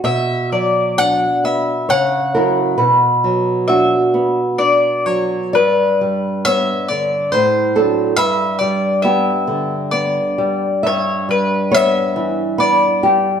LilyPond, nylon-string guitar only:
\new Staff \with { instrumentName = "Nylon-string guitar" } { \time 3/4 \key b \minor \tempo 4 = 68 << { e''4 d''4 cis''8 ais'8 | b'4 fis'2 | d''4 cis''4 c''8 a'8 | b'4 g'2 |
\key e \dorian e''4 cis''4 b'8 g'8 | } \\ { b,8 fis8 d'8 b8 cis8 <fis e'>8 | b,8 fis8 d'8 b8 d'8 fis8 | g,8 g8 b8 d8 a,8 <fis d'>8 | g,8 g8 b8 d8 b8 g8 |
g,8 g8 b8 e8 b8 g8 | } >> }